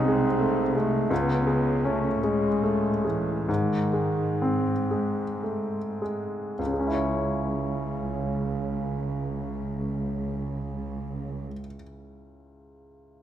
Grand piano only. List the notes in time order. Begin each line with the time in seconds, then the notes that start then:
Already playing: C2 G#3 D#4
0.08 G#3
0.40 A3
0.75 G#3
1.10 C#2
1.47 G#3
1.84 C#4
2.24 G#3
2.63 A3
3.05 G#3
3.48 G#2
3.93 G#3
4.42 C4
4.91 G#3
5.43 A3
6.02 G#3
6.59 C#2
6.66 C#3
6.73 G#3
6.80 C#4
6.87 E4
6.94 C#5